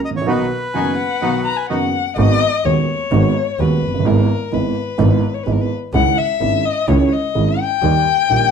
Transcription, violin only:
0.74 0.96 G#5 medium
0.98 1.42 F#5 medium
1.45 1.58 A#5 medium
1.57 1.69 G#5 medium
1.69 2.13 F#5 medium
2.17 2.67 D#5 loud
2.66 3.62 C#5 medium
3.60 4.09 B4 medium
4.07 4.56 A#4 medium
4.54 5.36 B4 medium
5.35 5.45 C#5 medium
5.44 5.54 B4 medium
5.53 5.63 A#4 medium
5.62 5.71 B4 medium
5.95 6.20 F#5 medium
6.18 6.67 E5 medium
6.66 6.91 D#5 medium
6.89 7.14 C#5 medium
7.13 7.62 D#5 medium
7.60 8.51 G5 loud

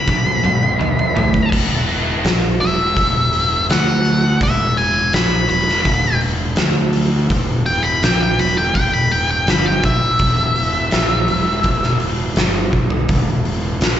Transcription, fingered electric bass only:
0.07 0.30 B1 medium
0.44 0.67 B1 medium
0.80 1.02 B1 medium
1.17 1.39 A2 medium
1.52 2.20 E1 medium
2.25 2.58 A#1 medium
2.61 2.94 E1 medium
2.97 3.65 E1 medium
3.70 4.37 D2 medium
4.41 5.09 E1 medium
5.14 5.47 A#1 loud
5.49 5.83 E1 medium
5.86 6.54 E1 loud
6.58 7.26 D2 medium
7.30 7.99 E1 medium
8.03 8.36 A#1 loud
8.38 8.72 E1 medium
8.75 9.43 E1 medium
9.48 9.81 G1 medium
9.84 10.17 B1 medium
10.20 10.88 E1 medium
10.93 11.26 A#1 medium
11.29 11.62 E1 medium
11.64 12.33 E1 medium
12.37 12.70 G1 medium
12.73 13.07 B1 medium
13.09 13.78 E1 medium
13.81 14.00 A#1 medium

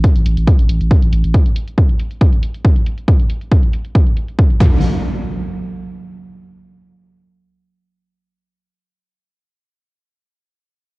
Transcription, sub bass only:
0.15 0.25 A1 medium
0.26 0.36 A1 loud
0.37 0.47 A1 medium
0.59 0.68 A1 medium
0.69 0.80 A1 loud
0.81 0.91 A1 medium
1.02 1.12 A1 medium
1.13 1.24 A1 medium
1.24 1.34 A1 medium

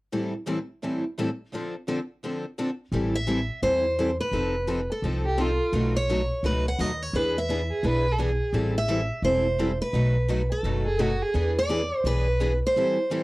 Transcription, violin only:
5.26 5.42 G4 medium
5.41 5.86 F4 medium
7.70 7.86 G#4 medium
7.85 8.13 B4 loud
8.12 8.21 A4 medium
8.20 8.65 G#4 medium
10.86 11.02 G#4 medium
11.01 11.24 F#4 medium
11.22 11.46 G#4 medium

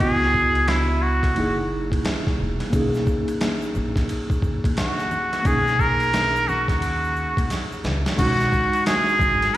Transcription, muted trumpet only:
0.00 0.70 G#4 loud
0.69 1.04 E4 medium
1.03 1.71 F#4 medium
4.78 5.48 F#4 medium
5.47 5.82 G#4 loud
5.81 6.50 A#4 loud
6.48 6.69 F#4 loud
6.69 7.68 F#4 medium
8.19 8.83 F#4 loud
8.86 9.56 G#4 loud

